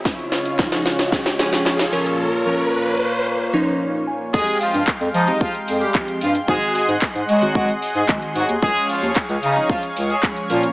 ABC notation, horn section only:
X:1
M:4/4
L:1/16
Q:1/4=112
K:Dblyd
V:1 name="Horn section"
z16 | z16 | [A,A]2 [F,F]2 z2 [Ee]2 [F,F] z2 [G,G] z2 [F,F] z | [A,A]2 [A,A]2 z2 [_G,_G]2 [G,G] z2 [A,A] z2 [G,G] z |
[A,A]2 [F,F]2 z2 [Ee]2 [F,F] z2 [A,A] z2 [F,F] z |]